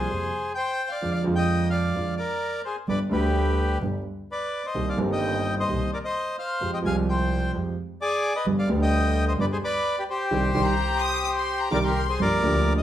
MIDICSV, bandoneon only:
0, 0, Header, 1, 2, 480
1, 0, Start_track
1, 0, Key_signature, -3, "minor"
1, 0, Tempo, 465116
1, 1052, Time_signature, 4, 2, 24, 8
1, 13237, End_track
2, 0, Start_track
2, 0, Title_t, "Bandoneon"
2, 0, Program_c, 0, 23
2, 0, Note_on_c, 0, 68, 65
2, 0, Note_on_c, 0, 72, 77
2, 526, Note_off_c, 0, 72, 0
2, 543, Note_off_c, 0, 68, 0
2, 565, Note_on_c, 0, 79, 99
2, 593, Note_on_c, 0, 72, 81
2, 917, Note_off_c, 0, 72, 0
2, 919, Note_on_c, 0, 77, 83
2, 938, Note_off_c, 0, 79, 0
2, 951, Note_on_c, 0, 74, 62
2, 1136, Note_off_c, 0, 77, 0
2, 1151, Note_on_c, 0, 77, 78
2, 1163, Note_off_c, 0, 74, 0
2, 1179, Note_on_c, 0, 74, 64
2, 1263, Note_off_c, 0, 77, 0
2, 1285, Note_off_c, 0, 74, 0
2, 1396, Note_on_c, 0, 79, 99
2, 1424, Note_on_c, 0, 75, 74
2, 1736, Note_off_c, 0, 79, 0
2, 1751, Note_off_c, 0, 75, 0
2, 1755, Note_on_c, 0, 77, 81
2, 1777, Note_on_c, 0, 74, 67
2, 2209, Note_off_c, 0, 77, 0
2, 2220, Note_off_c, 0, 74, 0
2, 2238, Note_on_c, 0, 74, 85
2, 2263, Note_on_c, 0, 70, 73
2, 2690, Note_off_c, 0, 74, 0
2, 2704, Note_off_c, 0, 70, 0
2, 2733, Note_on_c, 0, 72, 72
2, 2750, Note_on_c, 0, 68, 55
2, 2841, Note_off_c, 0, 72, 0
2, 2853, Note_off_c, 0, 68, 0
2, 2979, Note_on_c, 0, 74, 90
2, 2989, Note_on_c, 0, 71, 70
2, 3085, Note_off_c, 0, 74, 0
2, 3093, Note_off_c, 0, 71, 0
2, 3220, Note_on_c, 0, 71, 80
2, 3232, Note_on_c, 0, 67, 61
2, 3898, Note_off_c, 0, 71, 0
2, 3904, Note_off_c, 0, 67, 0
2, 4455, Note_on_c, 0, 71, 65
2, 4459, Note_on_c, 0, 74, 78
2, 4775, Note_off_c, 0, 71, 0
2, 4806, Note_on_c, 0, 72, 52
2, 4811, Note_off_c, 0, 74, 0
2, 4818, Note_on_c, 0, 75, 72
2, 5019, Note_off_c, 0, 72, 0
2, 5045, Note_on_c, 0, 74, 56
2, 5047, Note_off_c, 0, 75, 0
2, 5050, Note_on_c, 0, 77, 67
2, 5149, Note_off_c, 0, 74, 0
2, 5152, Note_off_c, 0, 77, 0
2, 5287, Note_on_c, 0, 75, 67
2, 5293, Note_on_c, 0, 79, 87
2, 5724, Note_off_c, 0, 75, 0
2, 5727, Note_off_c, 0, 79, 0
2, 5774, Note_on_c, 0, 72, 58
2, 5778, Note_on_c, 0, 75, 75
2, 6095, Note_off_c, 0, 72, 0
2, 6097, Note_off_c, 0, 75, 0
2, 6124, Note_on_c, 0, 74, 78
2, 6131, Note_on_c, 0, 70, 57
2, 6174, Note_off_c, 0, 74, 0
2, 6178, Note_off_c, 0, 70, 0
2, 6238, Note_on_c, 0, 75, 90
2, 6246, Note_on_c, 0, 72, 66
2, 6566, Note_off_c, 0, 75, 0
2, 6570, Note_off_c, 0, 72, 0
2, 6593, Note_on_c, 0, 77, 91
2, 6599, Note_on_c, 0, 72, 76
2, 6923, Note_off_c, 0, 77, 0
2, 6926, Note_off_c, 0, 72, 0
2, 6949, Note_on_c, 0, 79, 82
2, 6956, Note_on_c, 0, 75, 64
2, 7001, Note_off_c, 0, 79, 0
2, 7007, Note_off_c, 0, 75, 0
2, 7073, Note_on_c, 0, 80, 97
2, 7085, Note_on_c, 0, 77, 76
2, 7178, Note_off_c, 0, 80, 0
2, 7188, Note_off_c, 0, 77, 0
2, 7317, Note_on_c, 0, 79, 81
2, 7331, Note_on_c, 0, 72, 70
2, 7754, Note_off_c, 0, 79, 0
2, 7761, Note_off_c, 0, 72, 0
2, 8271, Note_on_c, 0, 74, 112
2, 8278, Note_on_c, 0, 68, 71
2, 8601, Note_off_c, 0, 68, 0
2, 8624, Note_on_c, 0, 75, 90
2, 8631, Note_on_c, 0, 71, 66
2, 8632, Note_off_c, 0, 74, 0
2, 8729, Note_off_c, 0, 75, 0
2, 8734, Note_off_c, 0, 71, 0
2, 8863, Note_on_c, 0, 77, 80
2, 8867, Note_on_c, 0, 74, 61
2, 8968, Note_off_c, 0, 77, 0
2, 8971, Note_off_c, 0, 74, 0
2, 9104, Note_on_c, 0, 79, 104
2, 9109, Note_on_c, 0, 75, 81
2, 9542, Note_off_c, 0, 79, 0
2, 9545, Note_off_c, 0, 75, 0
2, 9574, Note_on_c, 0, 75, 84
2, 9583, Note_on_c, 0, 72, 72
2, 9627, Note_off_c, 0, 75, 0
2, 9634, Note_off_c, 0, 72, 0
2, 9705, Note_on_c, 0, 74, 94
2, 9713, Note_on_c, 0, 71, 72
2, 9755, Note_off_c, 0, 74, 0
2, 9762, Note_off_c, 0, 71, 0
2, 9830, Note_on_c, 0, 72, 83
2, 9831, Note_on_c, 0, 68, 59
2, 9879, Note_off_c, 0, 72, 0
2, 9880, Note_off_c, 0, 68, 0
2, 9952, Note_on_c, 0, 74, 101
2, 9955, Note_on_c, 0, 71, 78
2, 10277, Note_off_c, 0, 71, 0
2, 10310, Note_off_c, 0, 74, 0
2, 10310, Note_on_c, 0, 71, 81
2, 10313, Note_on_c, 0, 67, 64
2, 10359, Note_off_c, 0, 71, 0
2, 10361, Note_off_c, 0, 67, 0
2, 10422, Note_on_c, 0, 72, 88
2, 10427, Note_on_c, 0, 67, 75
2, 12060, Note_off_c, 0, 72, 0
2, 12062, Note_off_c, 0, 67, 0
2, 12114, Note_on_c, 0, 70, 76
2, 12114, Note_on_c, 0, 74, 101
2, 12164, Note_off_c, 0, 70, 0
2, 12164, Note_off_c, 0, 74, 0
2, 12229, Note_on_c, 0, 70, 84
2, 12236, Note_on_c, 0, 67, 66
2, 12447, Note_off_c, 0, 70, 0
2, 12451, Note_off_c, 0, 67, 0
2, 12477, Note_on_c, 0, 72, 90
2, 12485, Note_on_c, 0, 68, 67
2, 12584, Note_off_c, 0, 68, 0
2, 12591, Note_off_c, 0, 72, 0
2, 12605, Note_on_c, 0, 74, 102
2, 12609, Note_on_c, 0, 70, 81
2, 13138, Note_off_c, 0, 74, 0
2, 13141, Note_off_c, 0, 70, 0
2, 13186, Note_on_c, 0, 75, 88
2, 13237, Note_off_c, 0, 75, 0
2, 13237, End_track
0, 0, End_of_file